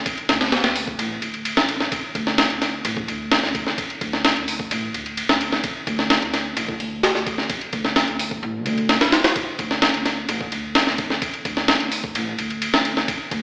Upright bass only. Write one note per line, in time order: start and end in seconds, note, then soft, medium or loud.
0.29 0.58 D2 loud
0.64 0.92 D2 medium
0.99 1.14 A1 loud
1.22 1.51 D2 medium
1.57 1.85 A1 medium
2.15 2.44 D2 loud
2.50 2.79 D2 medium
2.85 3.00 A1 loud
3.08 3.37 D2 medium
3.43 3.72 D2 medium
4.01 4.30 D2 loud
4.36 4.65 D2 medium
4.71 4.86 A1 loud
4.94 5.23 D2 medium
5.29 5.58 D2 medium
5.87 6.16 D2 loud
6.22 6.51 D2 medium
6.57 6.72 A1 loud
6.80 7.09 D2 medium
7.15 7.43 D2 medium
7.73 8.02 D2 loud
8.08 8.37 D2 medium
8.43 8.66 A1 loud
8.66 8.95 D2 medium
9.01 9.09 A1 medium
9.59 9.88 D2 loud
9.94 10.23 D2 medium
10.29 10.44 A1 loud
10.52 10.81 D2 medium
10.88 11.16 D2 medium
11.45 11.74 D2 loud
11.80 12.09 D2 medium
12.15 12.31 A1 loud
12.38 12.67 D2 medium
12.73 13.02 D2 medium
13.31 13.42 D2 loud